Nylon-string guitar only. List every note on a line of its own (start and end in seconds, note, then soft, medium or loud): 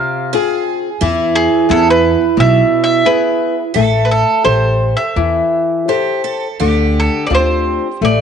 0.00 0.31 C3 medium
0.33 0.88 C4 soft
0.33 0.88 F4 soft
0.33 0.89 G#4 medium
1.02 1.68 E3 medium
1.69 2.23 B3 medium
1.69 2.24 E4 soft
1.69 2.24 G#4 medium
2.37 3.03 B2 medium
3.05 3.61 B3 soft
3.05 3.62 E4 soft
3.05 3.62 G#4 soft
3.76 4.44 A3 medium
4.44 5.02 G4 soft
4.44 5.02 A4 soft
4.44 5.02 C5 soft
5.16 5.87 E3 medium
5.88 6.46 G4 soft
5.88 6.46 A4 soft
5.88 6.46 C5 soft
6.60 7.29 D3 medium
7.30 7.87 C4 soft
7.30 7.87 D4 soft
7.30 7.87 F4 soft
8.02 8.21 A3 medium